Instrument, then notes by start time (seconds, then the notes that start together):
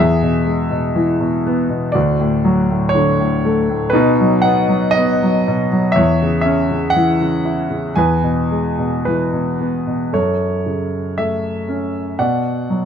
grand piano
Already playing: E2 E5
0.00 G#4
0.22 B2
0.45 G#3
0.71 B2
0.95 E3
1.20 B2
1.47 B3
1.70 B2
1.92 D2 F#4 D5
2.20 A2
2.44 F#3
2.70 A2
2.89 C#5
2.95 D3
3.20 A2
3.45 A3
3.69 A2
3.90 D#4 B4
3.95 B2
4.20 F#3
4.42 B3 F#5
4.69 F#3
4.91 D#5
4.97 B3
5.22 F#3
5.48 B2
5.72 F#3
5.92 C#5 E5
5.97 E2
6.22 C#3
6.41 E5
6.46 C#4
6.71 C#3
6.90 F#5
6.96 E3
7.21 C#3
7.45 E4
7.70 C#3
7.96 E2 B4 G#5
8.23 B2
8.51 G#3
8.78 B2
9.05 E3 B4
9.33 B2
9.61 B3
9.87 B2
10.13 F#2 A4 C#5
10.66 C#3
11.18 A3 E5
11.69 C#4
12.19 B2 D5 F#5
12.70 F#3